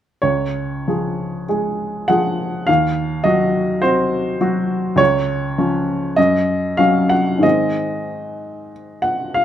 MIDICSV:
0, 0, Header, 1, 2, 480
1, 0, Start_track
1, 0, Key_signature, -5, "major"
1, 0, Tempo, 1255230
1, 91, Time_signature, 4, 2, 24, 8
1, 568, Tempo, 1192843
1, 1048, Tempo, 1162791
1, 2488, Tempo, 1279318
1, 3719, End_track
2, 0, Start_track
2, 0, Title_t, "Upright piano"
2, 0, Program_c, 0, 0
2, 83, Note_on_c, 0, 73, 62
2, 88, Note_on_c, 0, 37, 37
2, 167, Control_c, 0, 64, 127
2, 336, Note_on_c, 0, 53, 28
2, 338, Note_on_c, 0, 68, 29
2, 554, Note_off_c, 0, 53, 0
2, 555, Note_off_c, 0, 68, 0
2, 569, Note_on_c, 0, 68, 32
2, 571, Note_on_c, 0, 56, 29
2, 796, Note_off_c, 0, 56, 0
2, 796, Note_off_c, 0, 68, 0
2, 807, Note_off_c, 0, 73, 0
2, 807, Note_on_c, 0, 78, 70
2, 813, Note_on_c, 0, 53, 34
2, 815, Note_on_c, 0, 68, 38
2, 1031, Note_off_c, 0, 37, 0
2, 1034, Note_off_c, 0, 53, 0
2, 1034, Note_off_c, 0, 68, 0
2, 1043, Note_on_c, 0, 77, 68
2, 1046, Note_off_c, 0, 78, 0
2, 1052, Note_on_c, 0, 39, 47
2, 1056, Control_c, 0, 64, 0
2, 1119, Control_c, 0, 64, 127
2, 1278, Note_on_c, 0, 75, 68
2, 1283, Note_off_c, 0, 77, 0
2, 1284, Note_on_c, 0, 54, 36
2, 1287, Note_on_c, 0, 66, 41
2, 1507, Note_off_c, 0, 54, 0
2, 1508, Note_off_c, 0, 66, 0
2, 1518, Note_on_c, 0, 72, 67
2, 1520, Note_off_c, 0, 75, 0
2, 1524, Note_on_c, 0, 60, 37
2, 1524, Note_on_c, 0, 66, 37
2, 1748, Note_off_c, 0, 60, 0
2, 1748, Note_off_c, 0, 66, 0
2, 1762, Note_on_c, 0, 54, 44
2, 1764, Note_on_c, 0, 66, 43
2, 1986, Note_off_c, 0, 54, 0
2, 1988, Note_off_c, 0, 66, 0
2, 1989, Note_off_c, 0, 39, 0
2, 1990, Note_on_c, 0, 37, 50
2, 1996, Note_on_c, 0, 73, 87
2, 2001, Note_off_c, 0, 72, 0
2, 2011, Control_c, 0, 64, 0
2, 2074, Control_c, 0, 64, 127
2, 2248, Note_on_c, 0, 53, 38
2, 2250, Note_on_c, 0, 61, 41
2, 2467, Note_off_c, 0, 37, 0
2, 2474, Note_off_c, 0, 53, 0
2, 2475, Note_off_c, 0, 61, 0
2, 2485, Note_off_c, 0, 73, 0
2, 2487, Note_on_c, 0, 75, 72
2, 2493, Note_on_c, 0, 42, 54
2, 2495, Control_c, 0, 64, 0
2, 2554, Control_c, 0, 64, 127
2, 2716, Note_on_c, 0, 77, 71
2, 2721, Note_off_c, 0, 75, 0
2, 2721, Note_on_c, 0, 54, 35
2, 2723, Note_on_c, 0, 61, 38
2, 2836, Note_on_c, 0, 78, 68
2, 2839, Note_off_c, 0, 77, 0
2, 2946, Note_on_c, 0, 44, 34
2, 2949, Note_off_c, 0, 54, 0
2, 2950, Note_off_c, 0, 61, 0
2, 2951, Note_on_c, 0, 51, 31
2, 2952, Note_off_c, 0, 42, 0
2, 2957, Note_on_c, 0, 56, 30
2, 2961, Note_on_c, 0, 60, 29
2, 2961, Note_on_c, 0, 75, 63
2, 2962, Note_off_c, 0, 78, 0
2, 2971, Control_c, 0, 64, 0
2, 3054, Control_c, 0, 64, 127
2, 3448, Note_off_c, 0, 75, 0
2, 3559, Note_on_c, 0, 78, 60
2, 3680, Note_on_c, 0, 77, 63
2, 3684, Note_off_c, 0, 78, 0
2, 3719, Note_off_c, 0, 44, 0
2, 3719, Note_off_c, 0, 51, 0
2, 3719, Note_off_c, 0, 56, 0
2, 3719, Note_off_c, 0, 60, 0
2, 3719, Note_off_c, 0, 77, 0
2, 3719, End_track
0, 0, End_of_file